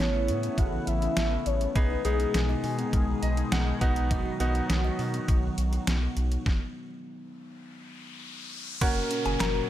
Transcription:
Already playing: C#3 E3 A3 B3 C#4 E4 A4 C#5
0.00 A1
0.14 E4
0.28 A2 C#4, closed hi-hat
0.43 B3, closed hi-hat
0.58 A1 A3 F#5, kick, closed hi-hat
0.73 E3
0.87 A1 E5, closed hi-hat
1.02 C#4, closed hi-hat
1.17 A1 B3, snare, closed hi-hat
1.31 A3
1.46 A1 C#5, closed hi-hat
1.61 closed hi-hat
1.75 B1 B2 D#3 G#3 B3 D#4 G#4 B4 D#5, kick, closed hi-hat
1.90 D#4
2.05 B1 B3 D#4 G#4, closed hi-hat
2.20 G#3, closed hi-hat
2.34 B1 D#3, snare, closed hi-hat
2.49 D#5
2.64 B2 D#4, open hi-hat
2.78 B3, closed hi-hat
2.93 B1 G#3, kick, closed hi-hat
3.08 D#3
3.23 B1 D#5, closed hi-hat
3.37 D#4, closed hi-hat
3.52 B1 B3 F#5, snare, closed hi-hat
3.67 G#3
3.81 B1 D#3 F#3 B3 D#4 F#4, kick, closed hi-hat
3.96 closed hi-hat
4.11 D#5, kick, closed hi-hat
4.26 D#4
4.40 B1 B3 D#4 F#4, closed hi-hat
4.55 F#3, closed hi-hat
4.70 B1 D#3, snare, closed hi-hat
4.84 D#5
4.99 B2 D#4, open hi-hat
5.14 B3, closed hi-hat
5.28 B1 F#3, kick, closed hi-hat
5.43 D#3
5.58 B1, closed hi-hat
5.73 D#4, closed hi-hat
5.87 B1 B3, snare, closed hi-hat
6.02 F#3
6.17 B1, closed hi-hat
6.32 closed hi-hat
6.46 kick, snare, riser
8.81 F#1 A#2 C#3 F#3 C#4 F#4 A#4 C#5 F#5, kick, closed hi-hat, crash, downlifter
8.96 F#4
9.11 C#4, closed hi-hat
9.26 F#1 A#3 G#5, closed hi-hat
9.40 F#1 F#3 A#5, snare, clap, closed hi-hat
9.55 F#5

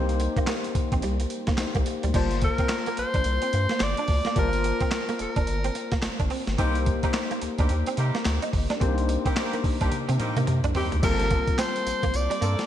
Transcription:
Already playing: C2 A#3 D#4 G4 C5
0.09 closed hi-hat
0.20 muted clean electric guitar stroke, closed hi-hat
0.37 A#3, kick, closed hi-hat
0.47 A#3, snare, clap, closed hi-hat
0.64 closed hi-hat
0.75 A#1, muted clean electric guitar stroke, kick, closed hi-hat
0.92 A#1 C4, kick, closed hi-hat
1.02 C2 G3, closed hi-hat
1.20 muted clean electric guitar stroke, closed hi-hat
1.30 closed hi-hat
1.47 A#3, kick, snare, closed hi-hat
1.58 C2 A#3 D#4 G4 C5, snare, clap, closed hi-hat
1.75 C2 A#3, kick, closed hi-hat
1.86 muted clean electric guitar stroke, closed hi-hat
2.03 D2 G3, closed hi-hat
2.14 G1 G3 A#3 F4 C5 A5, kick, closed hi-hat, crash
2.31 closed hi-hat
2.42 A#4, muted clean electric guitar stroke, kick, closed hi-hat
2.58 C4, kick, closed hi-hat
2.69 snare, clap, closed hi-hat
2.86 A#3, closed hi-hat
2.97 A#1 C5, muted clean electric guitar stroke, closed hi-hat
3.14 A#1 D4, kick, closed hi-hat
3.24 C2, closed hi-hat
3.42 C4, closed hi-hat
3.53 G2, muted clean electric guitar stroke, closed hi-hat
3.69 A#3, snare, closed hi-hat
3.80 G1 D5, snare, clap, closed hi-hat
3.97 D4, closed hi-hat
4.08 D2, muted clean electric guitar stroke, kick, open hi-hat
4.25 A#3, snare, closed hi-hat
4.36 G1 G3 A#3 F4 A#4 C5 A5, kick, closed hi-hat
4.53 closed hi-hat
4.64 muted clean electric guitar stroke, closed hi-hat
4.80 C4, kick, closed hi-hat
4.91 snare, clap, closed hi-hat
5.09 A#3, closed hi-hat
5.19 F1 A#4, muted clean electric guitar stroke, closed hi-hat
5.36 F1 D4, kick, closed hi-hat
5.47 G1, closed hi-hat
5.64 C4, closed hi-hat
5.75 muted clean electric guitar stroke, closed hi-hat
5.92 A#3, kick, snare, closed hi-hat
6.02 G1, muted clean electric guitar stroke, snare, clap, closed hi-hat
6.20 G1 D4, kick, closed hi-hat
6.30 C4, open hi-hat
6.47 G1, snare, closed hi-hat
6.58 C2 G3 A#3 C4 D#4 G4 C5, kick, closed hi-hat
6.75 closed hi-hat
6.86 muted clean electric guitar stroke, kick, closed hi-hat
7.03 G3 A#3 C4 D#4 G4, kick, closed hi-hat
7.14 snare, clap, closed hi-hat
7.31 A#3, closed hi-hat
7.42 D2, muted clean electric guitar stroke, closed hi-hat
7.58 D2 G3 A#3 C4 D4 D#4 G4, kick, closed hi-hat
7.69 D#2, closed hi-hat
7.86 C4, closed hi-hat
7.97 C3 G3 A#3 C4 D#4 G4, muted clean electric guitar stroke, closed hi-hat
8.15 A#3, snare, closed hi-hat
8.25 D2, snare, clap, closed hi-hat
8.42 D#4, closed hi-hat
8.53 G1, muted clean electric guitar stroke, kick, open hi-hat
8.70 D4, snare, closed hi-hat
8.80 C2 A#3 C4 D4 G4 C5, kick, closed hi-hat
8.88 D#4
8.98 closed hi-hat
9.09 muted clean electric guitar stroke, closed hi-hat
9.25 G3 A#3 C4 D#4 G4, kick, closed hi-hat
9.36 G3 A#3 C4 D#4 G4, snare, clap, closed hi-hat
9.53 A#3, closed hi-hat
9.64 C2, muted clean electric guitar stroke, kick, open hi-hat
9.81 C2 G3 A#3 C4 D4 D#4 G4, kick, closed hi-hat
9.92 closed hi-hat, high tom
10.09 C3 C4, closed hi-hat
10.19 G3 A#3 C4 D#4 G4, muted clean electric guitar stroke, closed hi-hat, mid tom
10.37 C3 A#3, closed hi-hat
10.47 C3, muted clean electric guitar stroke, closed hi-hat, mid tom
10.64 C2 D4, closed hi-hat, mid tom
10.75 G3 A#3 C4 D#4 G4, floor tom, open hi-hat
10.92 D2, closed hi-hat, floor tom
11.02 G1 G3 A3 A#3 C4 F4 G#4 A4 A#4, kick, closed hi-hat, crash, tambourine
11.11 A5
11.20 muted clean electric guitar stroke, closed hi-hat
11.31 A#3, kick, closed hi-hat
11.48 kick, closed hi-hat
11.58 C4 C5, snare, clap, closed hi-hat, tambourine
11.76 closed hi-hat
11.87 A#1, muted clean electric guitar stroke, closed hi-hat, tambourine
12.03 A#1 A#3, kick, closed hi-hat
12.14 C2 D5, muted clean electric guitar stroke, closed hi-hat, tambourine
12.30 G3, closed hi-hat
12.41 G2 A3 A#3 C4 F4 A4, closed hi-hat, tambourine
12.59 snare, closed hi-hat

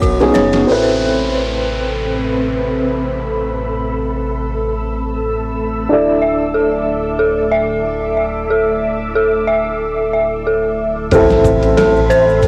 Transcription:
Already playing: B3 C#4 D#4 F#4 C#5
0.02 B1 F#4, kick, ride, shaker
0.20 B3 C#4 D#4 G#4, snare, shaker
0.34 F#1 C#5, snare, ride, shaker
0.52 snare, ride, shaker
0.67 A1 C4 E4 A4 B5 E6, downlifter
0.72 B4
5.89 D1 D4 E4 A4 E5 D6
5.93 D5
6.22 E5
6.54 A4
7.19 A4
7.51 E5
8.17 E5
8.50 A4
9.15 A4
9.47 E5
10.13 E5
10.47 A4
11.11 A1 C4 E4 A4 E5 B5 C6, kick, ride, impact, shaker
11.30 snare, shaker
11.44 kick, ride, shaker
11.62 ride, shaker
11.77 A4, snare, ride, shaker
11.96 shaker
12.10 C5, ride, shaker
12.29 shaker
12.42 kick, ride, shaker

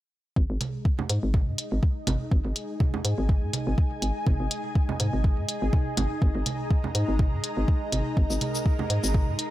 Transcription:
0.36 G#1 G#3 D#4 G#4, kick
0.50 G#1
0.54 G#4 D#5
0.61 closed hi-hat, high conga
0.85 kick
0.99 low conga
1.10 G#2, closed hi-hat
1.23 G#1
1.34 kick, high conga
1.48 G#2
1.58 closed hi-hat
1.72 G#1
1.83 kick
2.03 G#5
2.07 G#1, closed hi-hat, high conga, low conga
2.31 G#1, kick
2.45 G#1
2.56 closed hi-hat
2.80 kick, high conga
2.94 low conga
3.05 G#2, closed hi-hat
3.18 G#1
3.29 kick
3.43 G#2
3.53 closed hi-hat, high conga
3.67 G#1
3.78 kick
4.02 G#1, closed hi-hat
4.27 G#1, kick, high conga
4.40 G#1
4.51 closed hi-hat
4.75 kick
4.89 low conga
5.00 G#2, closed hi-hat, high conga
5.13 G#1
5.24 kick
5.38 G#2
5.49 closed hi-hat
5.62 G#1
5.73 kick, high conga
5.93 A#5
5.97 G#1, closed hi-hat, low conga
6.22 G#1, kick
6.35 G#1
6.46 closed hi-hat, high conga
6.71 kick
6.84 low conga
6.95 G#2, closed hi-hat
7.08 G#1
7.19 kick, high conga
7.33 G#2
7.44 closed hi-hat
7.57 G#1
7.68 kick
7.92 G#1, closed hi-hat, high conga
8.17 G#1 A#4, kick
8.30 G#1, cabasa
8.41 closed hi-hat, high conga
8.55 cabasa
8.66 kick
8.79 low conga
8.90 G#2, closed hi-hat
9.04 G#1, cabasa
9.14 kick, high conga
9.28 G#2
9.39 closed hi-hat

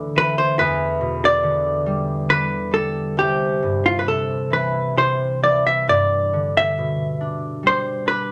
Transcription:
Already playing: D2 D3 A3
0.15 E3 B4
0.38 C5
0.59 E2 B4
1.01 B2
1.25 D5
1.43 D3
1.86 G3
2.29 D3 B4
2.71 G3 A4
3.17 C2 G4
3.63 G2
3.86 F4
3.99 B4
4.06 C3 A4
4.50 E3 B4
4.96 C3 C5
5.42 E3 D5
5.67 E5
5.88 G2 D5
6.33 D3
6.57 E5
6.78 B2
7.21 D4
7.63 G3
7.67 C5
8.06 D4 B4

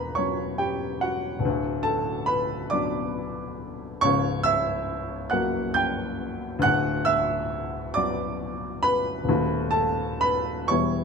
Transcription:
Already playing: E1 E2 A#4 B4 A#5 B5
0.15 F#3 C#4 C#5 C#6
0.58 G4 G5
1.01 F#4 F#5
1.39 D1
1.45 D2
1.83 A4 A5
2.26 B4 B5
2.70 F#3 B3 D4 D5 D6
4.01 C#1 C#2 C#5 C#6
4.43 E5 E6
5.30 F#3 A#3 F#4 F#5 F#6
5.74 G5 G6
6.59 D2 F#6
6.63 D1 F#5
7.05 E5 E6
7.94 F#3 B3 D5 D6
7.98 F#4
8.83 B4 B5
9.24 D#1
9.29 D#2 A3 B3 F#4
9.71 A4 A5
10.21 B4 B5
10.68 E1 E2 G3 B3 E4 C#5 C#6

